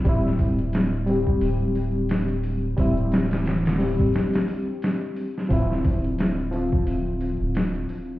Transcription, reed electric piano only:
X:1
M:4/4
L:1/8
Q:"Swing 16ths" 1/4=88
K:Dm
V:1 name="Reed electric piano"
[G,CE]3 [G,CG]4- [G,CG] | [G,CE]3 [G,CG]4- [G,CG] | [F,CE]3 [F,CF]4- [F,CF] |]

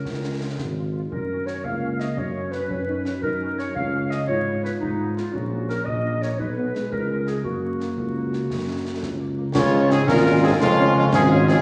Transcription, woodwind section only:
X:1
M:6/8
L:1/8
Q:3/8=114
K:F#
V:1 name="Woodwind section"
A3 z3 | A2 c e2 d | c2 B4 | A2 c e2 d |
c2 _c D2 =F | F2 A d2 c | B3 A2 G | F6- |
F4- F z | [K:Db] F2 C D2 C | A,2 A, D2 C |]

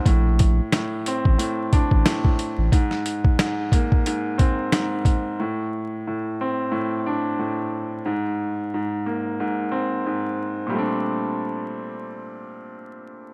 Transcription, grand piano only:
X:1
M:4/4
L:1/8
Q:"Swing 16ths" 1/4=90
K:Bb
V:1 name="Grand piano" clef=bass
A,,2 A,, C A,, D A,,2 | _A,,2 A,, B, A,, C A,,2 | A,,2 A,, C A,, D A,,2 | _A,,2 A,, B, A,, C A,,2 |
[B,,G,A,CD]8 |]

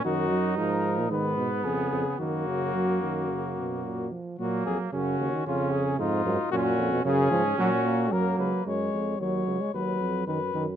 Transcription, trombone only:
X:1
M:4/4
L:1/16
Q:1/4=112
K:F#
V:1 name="Trombone" clef=bass
D,2 F,2 E,4 D,2 B,,2 C,4 | D,2 C,2 F,2 D,2 C,2 B,,2 A,,2 E,2 | F,4 C,3 D, C,4 G,,2 G,,2 | A,,3 B,, C,2 E,2 F,2 A,2 F,4 |
G,4 F,3 G, F,4 D,2 D,2 |]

